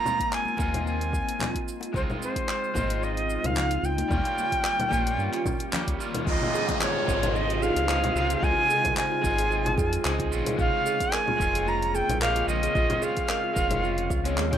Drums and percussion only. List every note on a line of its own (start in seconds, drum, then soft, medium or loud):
0.06 low conga medium
0.06 shaker medium
0.20 kick medium
0.20 closed hi-hat soft
0.20 shaker soft
0.33 clap medium
0.33 shaker soft
0.45 high conga medium
0.45 shaker soft
0.57 kick medium
0.57 high bongo medium
0.57 high conga medium
0.57 shaker medium
0.74 closed hi-hat medium
0.74 low conga medium
0.74 shaker soft
0.87 shaker soft
1.01 closed hi-hat soft
1.01 shaker soft
1.13 kick medium
1.13 shaker medium
1.29 closed hi-hat medium
1.29 shaker soft
1.39 clap medium
1.39 low conga medium
1.41 low conga medium
1.41 shaker soft
1.55 kick medium
1.55 closed hi-hat soft
1.55 shaker soft
1.68 shaker medium
1.81 closed hi-hat medium
1.81 high bongo medium
1.81 shaker soft
1.94 kick loud
1.94 shaker soft
2.10 low conga medium
2.10 shaker soft
2.22 shaker medium
2.36 kick medium
2.36 closed hi-hat medium
2.36 shaker soft
2.48 clap medium
2.48 shaker soft
2.64 shaker soft
2.75 kick medium
2.75 high bongo medium
2.75 high conga medium
2.75 low conga medium
2.75 shaker medium
2.90 closed hi-hat medium
2.90 shaker soft
3.03 shaker soft
3.17 closed hi-hat soft
3.17 shaker soft
3.30 shaker medium
3.44 closed hi-hat medium
3.44 low conga medium
3.44 shaker soft
3.56 clap loud
3.56 low conga medium
3.56 shaker soft
3.71 closed hi-hat soft
3.71 shaker soft
3.84 shaker medium
3.98 closed hi-hat medium
3.98 high bongo medium
3.98 high conga medium
3.98 shaker soft
4.11 kick loud
4.11 low conga medium
4.11 shaker soft
4.25 closed hi-hat soft
4.25 shaker soft
4.38 high conga medium
4.38 shaker medium
4.52 kick medium
4.52 closed hi-hat medium
4.52 shaker soft
4.64 clap loud
4.64 shaker soft
4.79 closed hi-hat soft
4.79 high conga medium
4.79 low conga medium
4.79 shaker soft
4.91 kick medium
4.91 high bongo medium
4.91 high conga medium
4.91 shaker medium
5.07 closed hi-hat medium
5.07 shaker soft
5.19 shaker soft
5.33 clap soft
5.33 closed hi-hat soft
5.33 shaker soft
5.46 kick loud
5.46 low conga medium
5.46 shaker medium
5.60 closed hi-hat medium
5.60 shaker soft
5.73 clap loud
5.73 low conga medium
5.73 shaker soft
5.87 kick medium
5.87 closed hi-hat soft
5.87 shaker soft
6.00 shaker medium
6.15 closed hi-hat medium
6.15 high bongo medium
6.15 low conga medium
6.15 shaker soft
6.27 kick loud
6.27 shaker soft
6.42 low conga medium
6.55 shaker medium
6.69 kick medium
6.69 closed hi-hat medium
6.69 shaker soft
6.81 clap loud
6.81 shaker soft
7.08 kick loud
7.08 shaker medium
7.23 closed hi-hat medium
7.23 low conga medium
7.23 shaker soft
7.36 shaker soft
7.50 closed hi-hat soft
7.63 shaker medium
7.76 closed hi-hat medium
7.76 shaker soft
7.89 clap loud
7.89 shaker soft
8.04 closed hi-hat soft
8.04 low conga medium
8.16 shaker medium
8.30 closed hi-hat medium
8.30 shaker soft
8.43 kick loud
8.43 shaker soft
8.70 shaker medium
8.85 kick medium
8.85 closed hi-hat medium
8.85 low conga medium
8.85 shaker soft
8.97 clap loud
8.97 shaker soft
9.24 kick loud
9.24 shaker medium
9.38 closed hi-hat medium
9.38 shaker soft
9.52 shaker soft
9.66 closed hi-hat soft
9.66 low conga medium
9.78 kick loud
9.78 shaker medium
9.93 closed hi-hat medium
9.93 shaker soft
10.05 clap loud
10.05 shaker soft
10.19 kick medium
10.19 closed hi-hat soft
10.32 shaker medium
10.46 closed hi-hat medium
10.46 low conga medium
10.46 shaker soft
10.59 kick loud
10.59 shaker soft
10.86 shaker medium
11.00 kick medium
11.00 closed hi-hat medium
11.00 shaker soft
11.13 clap loud
11.13 shaker soft
11.28 low conga medium
11.40 kick loud
11.40 shaker medium
11.55 closed hi-hat medium
11.55 shaker soft
11.68 shaker soft
11.82 closed hi-hat soft
11.95 shaker medium
12.10 closed hi-hat medium
12.10 low conga medium
12.10 shaker soft
12.22 clap loud
12.22 shaker soft
12.36 closed hi-hat soft
12.49 shaker medium
12.63 closed hi-hat medium
12.63 shaker soft
12.75 kick loud
12.75 shaker soft
12.90 closed hi-hat soft
12.90 low conga medium
13.02 shaker medium
13.17 kick medium
13.17 closed hi-hat soft
13.17 shaker soft
13.29 clap medium
13.29 shaker soft
13.56 kick loud
13.56 shaker medium
13.71 closed hi-hat medium
13.71 low conga medium
13.71 shaker soft
13.84 shaker soft
13.98 closed hi-hat soft
14.10 kick loud
14.10 shaker medium
14.25 closed hi-hat medium
14.25 shaker soft
14.38 clap loud
14.38 shaker soft
14.52 kick medium
14.52 closed hi-hat soft
14.52 low conga medium